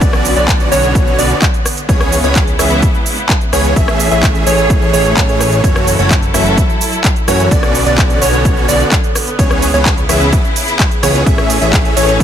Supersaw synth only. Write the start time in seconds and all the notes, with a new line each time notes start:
0.01 D3 B3 C#4 F#4 D5
0.36 D3 B3 C#4 F#4 D5
0.72 D3 B3 C#4 F#4 C#5
1.19 D3 B3 C#4 F#4 D5
1.89 E3 B3 C#4 G#4 C#5
2.24 E3 B3 C#4 G#4 C#5
2.59 E3 B3 C#4 G#4 E5
3.53 E3 B3 C#4 G#4 C#5
3.76 E3 A3 C#4 G#4 E5
4.11 E3 A3 C#4 G#4 E5
4.47 E3 A3 C#4 G#4 C#5
4.94 E3 A3 C#4 G#4 C#5
5.17 E3 A3 C#4 G#4 C#5
5.64 E3 A3 C#4 F#4 C#5
5.99 E3 A3 C#4 F#4 C#5
6.34 E3 A3 C#4 F#4 E5
7.28 E3 A3 C#4 F#4 C#5
7.51 D3 B3
7.86 D3 B3 C#4 F#4 D5
8.21 D3 B3 C#4 F#4 C#5
8.68 D3 B3 C#4 F#4 D5
9.39 E3 B3 C#4 G#4 C#5
9.74 E3 B3 C#4 G#4 C#5
10.09 E3 B3 C#4 G#4 E5
11.03 E3 B3 C#4 G#4 C#5
11.26 E3 A3 C#4 G#4 E5
11.62 E3 A3 C#4 G#4 E5
11.97 E3 A3 C#4 G#4 C#5